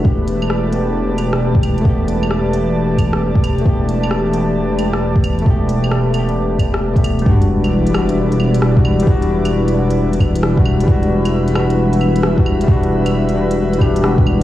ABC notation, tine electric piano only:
X:1
M:4/4
L:1/16
Q:"Swing 16ths" 1/4=133
K:Em
V:1 name="Tine electric piano"
[A,B,G]6 [A,B,G]8- [A,B,G]2 | [A,B,G]6 [A,B,G]8- [A,B,G]2 | [A,B,G]6 [A,B,G]8- [A,B,G]2 | [A,B,G]6 [A,B,G]6- [A,B,G] [A,B,G]3 |
[G,DF]6 [G,DF]6- [G,DF] [G,DF]3 | [G,DF]6 [G,DF]6- [G,DF] [G,DF]3 | [G,DF]6 [G,DF]6- [G,DF] [G,DF]3 | [G,DF]6 [G,DF]4 [G,DG]2 [G,DF]4 |]